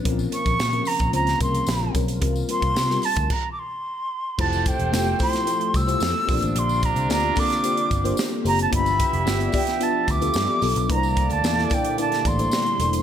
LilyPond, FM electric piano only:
\new Staff \with { instrumentName = "FM electric piano" } { \time 4/4 \key f \major \tempo 4 = 111 <f c' des' bes'>8 <f c' des' bes'>8 r16 <f c' des' bes'>8 r16 <f c' des' c''>8 <f c' des' bes'>8. r16 <f c' des' bes'>8 | <g c' f' bes'>8 <g c' f' bes'>8 r16 <g c' f' bes'>8 r2 r16 | <a e' f' g' c''>8. r16 <a e' f' g' c''>8 <a e' f' g' c''>8 <a e' f' g' a'>8 r16 <a e' f' g' c''>8 r16 <bes c' d' f' g' c''>8~ | <bes c' d' f' g' c''>8. r16 <bes d' f' g' d''>8 <bes d' g' a'>8 <bes d' f' g' c''>8 r16 <bes d' f' g' c''>8 r16 <bes d' f' g' c''>8 |
<b d' f' g' d''>8. r16 <b d' f' g' e''>8 <b d' f' g' d''>8 <b d' f' g' d''>8 r16 <b d' f' g' a'>8 r16 <b d' f' g' a'>8 | <a bes d' e' b' c''>8. r16 <bes d' e' a' d''>8 <bes d' e' a' d''>8 <bes d' e' a' d''>8 r16 <bes d' e' a' c''>8 r16 <bes d' e' a' c''>8 | }